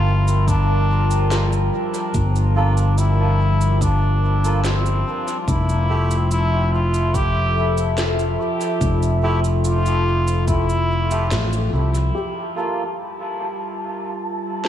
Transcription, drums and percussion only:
0.28 cabasa
0.48 kick, cabasa
1.11 cabasa
1.31 snare, cabasa
1.53 cabasa
1.94 cabasa
2.14 kick, cabasa
2.36 cabasa
2.77 cabasa
2.98 cabasa
3.61 cabasa
3.81 kick, cabasa
4.44 cabasa
4.65 snare, cabasa
4.86 cabasa
5.28 cabasa
5.48 kick, cabasa
5.69 cabasa
6.11 cabasa
6.31 cabasa
6.94 cabasa
7.14 kick, cabasa
7.78 cabasa
7.98 snare, cabasa
8.19 cabasa
8.61 cabasa
8.81 kick, cabasa
9.03 cabasa
9.44 cabasa
9.65 cabasa
9.86 cabasa
10.28 cabasa
10.48 kick, cabasa
10.69 cabasa
11.11 cabasa
11.31 snare, cabasa
11.53 cabasa
11.95 cabasa
14.65 snare

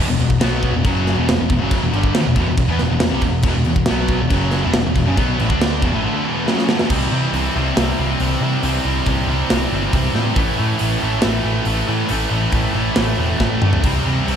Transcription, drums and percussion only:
0.20 crash
0.30 kick
0.41 snare, crash
0.63 kick, crash
0.85 kick, crash
1.07 snare, crash
1.29 snare, crash
1.50 kick, crash
1.71 kick, crash
1.93 crash
2.03 kick
2.15 snare, crash
2.36 kick, crash
2.58 kick, crash
2.79 snare, crash
3.00 snare, crash
3.21 kick, crash
3.42 kick, crash
3.65 crash
3.76 kick
3.86 snare, crash
4.08 kick, crash
4.30 kick, crash
4.51 snare, crash
4.74 snare, crash
4.95 kick, crash
5.17 kick, crash
5.40 crash
5.50 kick
5.62 snare, crash
5.82 kick, crash
6.48 snare
6.59 snare
6.69 snare
6.79 snare
6.90 kick, crash
7.34 open hi-hat
7.77 snare, open hi-hat
8.20 open hi-hat
8.63 open hi-hat
9.06 kick, open hi-hat
9.50 snare, open hi-hat
9.93 kick, open hi-hat
10.15 snare
10.36 kick, open hi-hat
10.79 open hi-hat
11.22 snare, open hi-hat
11.65 open hi-hat
12.09 open hi-hat
12.52 kick, open hi-hat
12.96 snare, open hi-hat
13.40 kick, snare
13.62 mid tom
13.73 floor tom
13.84 kick, open hi-hat, crash
14.28 open hi-hat

